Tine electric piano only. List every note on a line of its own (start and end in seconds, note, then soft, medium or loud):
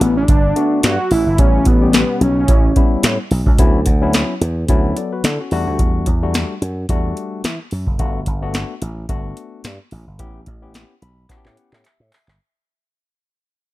0.56 0.96 A3 medium
0.56 0.96 B3 medium
0.56 0.96 D4 medium
0.56 0.96 F#4 medium
1.38 1.59 G3 medium
1.38 1.59 B3 medium
1.38 1.59 C#4 medium
1.38 1.59 E4 medium
1.81 2.25 G3 medium
1.81 2.25 B3 medium
1.81 2.25 C#4 medium
1.81 2.26 G4 medium
2.76 3.16 G3 medium
2.76 3.16 B3 medium
2.76 3.16 C#4 medium
2.76 3.16 E4 medium
3.59 3.79 F#3 medium
3.59 3.79 B3 medium
3.59 3.79 C#4 medium
3.59 3.79 E4 loud
4.02 4.33 F#3 loud
4.02 4.33 B3 medium
4.02 4.34 C#4 medium
4.02 4.34 E4 loud
4.69 5.21 F#3 medium
4.69 5.21 B3 medium
4.69 4.97 C#4 medium
4.69 4.97 E4 loud
4.97 5.12 A4 medium
4.97 5.11 D5 medium
5.13 5.24 F#4 medium
5.13 5.24 B4 medium
5.25 5.39 E4 medium
5.25 5.39 A4 medium
5.40 5.66 C#4 medium
5.40 5.52 F#4 medium
5.52 6.07 G3 medium
5.52 6.07 A3 medium
5.52 6.07 D4 medium
5.52 6.07 F#4 loud
6.22 6.54 G3 medium
6.22 6.54 A3 medium
6.22 6.54 D4 medium
6.22 6.54 F#4 medium
6.89 7.41 G3 medium
6.89 7.41 A3 medium
6.89 7.41 D4 medium
6.89 7.41 F#4 loud
7.99 8.19 A3 loud
7.99 8.20 B3 medium
7.99 8.20 D4 medium
7.99 8.20 F#4 loud
8.42 8.74 A3 medium
8.42 8.74 B3 medium
8.42 8.74 D4 medium
8.42 8.74 F#4 loud
9.09 9.61 A3 medium
9.09 9.61 B3 medium
9.09 9.61 D4 medium
9.09 9.61 F#4 loud
10.19 10.39 B3 medium
10.19 10.40 C#4 medium
10.19 10.40 E4 medium
10.19 10.40 G4 loud
10.62 10.94 B3 medium
10.62 10.94 C#4 medium
10.62 10.94 E4 medium
10.62 10.94 G4 loud
11.02 11.28 B5 medium
11.29 11.81 B3 medium
11.29 11.81 C#4 medium
11.29 11.81 E4 medium
11.29 11.37 F#4 medium
11.29 11.44 A5 medium
11.37 11.85 G4 loud
11.45 11.56 G5 medium
11.57 11.82 F#5 medium
11.84 12.10 E5 medium
12.12 12.38 E5 medium